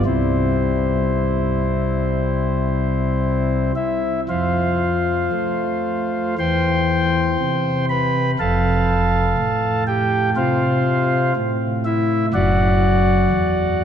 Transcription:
0.05 C2 C3 G3 C4 E4 C5
3.76 E4 E5
4.29 F2 F3 F4 C5 F5
5.32 A3
6.38 E2 E3 C5 G5 C6
7.39 C3
7.90 B4 B5
8.39 F1 F2 A4 F5 A5
9.38 A2
9.87 G4 G5
10.36 C3 F4 C5 F5
11.36 A2
11.85 E4 E5
12.33 F#1 F#2 F#4 D5 F#5
13.31 E2

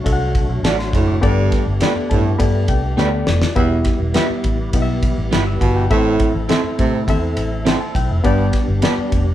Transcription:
Already playing: F#3 A3 D4 F#4
0.04 C2 D4 F#4 A4 E5, kick, ride
0.13 F#5
0.35 kick, ride
0.49 B1
0.63 A1 D4 F#4 A4 D5 A5, snare, ride
0.79 C6, snare
0.93 F#1 A2, kick, ride
1.08 D6
1.21 G1 G2 B3 G4 A4 D5, kick, ride
1.52 kick, snare, ride
1.66 G1
1.80 A3 D4 G4 A4 B4 D5, snare, ride
1.86 B3
1.96 muted fingered electric bass stroke
2.10 G2 A2 A5, kick, ride
2.38 G2 B3 G4 A4 D5 B5, kick, ride
2.68 C2 G5, kick, ride
2.97 D2 A3 B3 D4 G4 A4 B4 C#5 G5, snare
3.05 D5
3.27 F1 D5, snare
3.42 snare
3.56 E1 E2 G3 B3 E4 G4 E5, kick, ride
3.85 kick, snare, ride
4.00 E1
4.14 B3 E4 G4 B4 E5, snare, ride
4.30 muted fingered electric bass stroke
4.44 A1, kick, ride
4.73 B1 B3 E4 G4 D#5, kick, ride
4.82 E5
5.03 kick, ride
5.18 A1
5.31 G1 B3 E4 G4 B4, snare, ride
5.47 E6
5.61 G1 B2 B5, kick, ride
5.76 G5
5.90 A1 A2 A3 B3 C4 E4 A4 E5, kick, ride
5.97 C4
6.20 kick, ride
6.34 A1
6.48 C4 E4 A4 C5 E5, snare, ride
6.63 muted fingered electric bass stroke
6.79 A2 C3, kick, ride
7.08 E2 C4 E4 A4 E5, kick, ride
7.37 A1 E5, ride
7.65 C4 E4 A4 C5 G5, snare, ride
7.80 A5
7.95 B1 G5, kick, ride
8.10 F1 E5
8.24 G1 G2 G3 B3 D4 G4 D5, kick, ride
8.53 kick, snare, ride
8.68 G1
8.82 B3 D4 G4 B4 D5, snare, ride
8.98 muted fingered electric bass stroke
9.12 F1, kick, ride

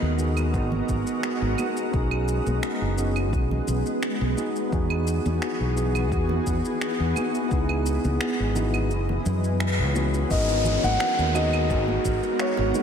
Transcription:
Already playing: G#3 B3 D#4 F#4 A#4 D#5
0.02 D#2
0.18 B3 D#4 F#4 G#4, shaker
0.37 claves, shaker
0.54 G#1, kick, shaker
0.72 high conga, low conga
0.89 G#1, kick, low conga, shaker
1.07 shaker
1.23 finger snap, shaker
1.42 G#1
1.58 B3 D#4 F#4 G#4, high conga, claves, shaker
1.77 shaker
1.91 B1 G#3 B3 C#4 D#4 F#4, kick, shaker
1.96 G#4
2.11 claves
2.28 shaker
2.46 B1, high conga, shaker
2.63 finger snap, shaker
2.81 F#1
2.97 C#4 D#4 F#4 G#4, shaker
3.16 claves, shaker
3.33 B1, kick, shaker
3.51 high conga, low conga
3.67 B1, low conga, shaker
3.86 shaker
4.03 finger snap, shaker
4.21 B1
4.36 E3 B3 D#4 F#4 G#4, high conga, shaker
4.56 shaker
4.70 E2 B3 D#4 F#4, kick, shaker
4.74 G#4
4.90 claves
5.07 shaker
5.26 E2, high conga, shaker
5.42 finger snap, shaker
5.60 B1
5.76 B3 D#4 F#4 G#4, shaker
5.95 claves, shaker
6.12 E2, kick, shaker
6.29 high conga, low conga
6.47 E2, kick, low conga, shaker
6.65 shaker
6.81 finger snap, shaker
7.00 E2
7.15 B3 D#4 F#4 G#4, high conga, claves, shaker
7.35 shaker
7.49 C#2 C#3 E3 G#3 B3 D#4 E4 D#5, kick, shaker
7.54 G#4
7.69 claves
7.86 shaker
8.04 C#2, high conga, shaker
8.21 finger snap, shaker
8.40 G#1
8.55 B3 D#4 E4 F#4, low conga, shaker
8.74 claves, shaker
8.91 F#1 F#3 C#4 G#4 B4, shaker
9.09 high conga, low conga
9.26 F#2, low conga, shaker
9.44 shaker
9.60 finger snap, shaker
9.79 C#2
9.94 B3 C#4 E4 F#4, high conga, shaker
10.14 shaker
10.28 G#1 G#3 B3 D#4 F#4 A#4 D#5, kick, downlifter, shaker
10.33 A#4
10.49 shaker
10.65 high bongo, low conga, shaker
10.83 G#1 F#5, high conga, low conga, shaker
11.00 finger snap, shaker
11.19 D#2, shaker
11.34 B3 D#4 F#4 G#4 D#5, high bongo, claves, shaker
11.53 claves, shaker
11.70 G#1, kick, shaker
11.88 high bongo, high conga
12.05 G#1, kick, low conga, shaker
12.23 shaker
12.39 C#5, finger snap, shaker
12.57 G#1, high bongo
12.74 B3 D#4 F#4 G#4, high conga, shaker

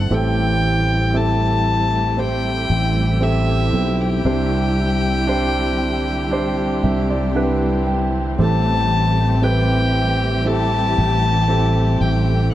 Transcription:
Already playing: C4 E4 A4 C5 F#5
0.10 A1 A2 E3 G3 A3 C4 E4 G4 A4 G5
1.14 C4 E4 G4 A4 A5
2.17 C4 E4 G4 C5 G5
2.70 A1
3.21 C4 E4 G4 A4 E5
3.73 B1
4.00 G5
4.25 C2 C3 D3 G3 C4 D4 E4 G4 C5
5.27 D4 E4 G4 C5
6.31 D4 E4 G4 C5
6.83 C2 E5
7.10 D5
7.35 D4 E4 G4 B4 F#5
7.87 G5
8.38 A1 A2 E3 A3 C4 E4 G4 A4 A5
9.42 C4 E4 G4 B4 G5
10.45 C4 E4 G4 A4 A5
10.98 A1
11.48 C4 E4 G4 A4
12.00 A1 G5

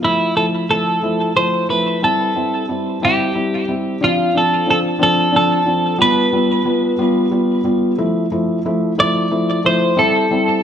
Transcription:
0.02 F3 A3 E4
0.36 F3 A3 E4 A4
0.69 F3 A3 E4 A4
1.03 F3 A3 E4
1.36 F3 A3 E4 C5
1.69 F3 A3 E4 B4
2.02 G3 C4 E4 A4
2.35 G3 C4 E4
2.69 G3 C4 E4
3.02 G3 C4 E4 G4
3.35 G3 C4 E4
3.68 G3 C4 E4
4.01 F3 C4 D4 F4
4.34 F3 C4 D4 A4
4.66 F3 C4 D4
4.71 A4
4.99 F3 C4 D4
5.03 A4
5.32 F3 C4 D4
5.36 A4
5.65 F3 C4 D4
5.98 G3 B3 F4 B4
6.32 G3 B3 F4
6.65 G3 B3 F4
6.98 G3 B3 F4
7.31 G3 B3 F4
7.64 G3 B3 F4
7.98 F3 A3 E4
8.32 F3 A3 E4
8.65 F3 A3 E4
8.98 F3 A3 E4 D5
9.31 F3 A3 E4
9.64 F3 A3 E4 C5
9.97 G3 C4 E4 A4
10.30 G3 C4 E4

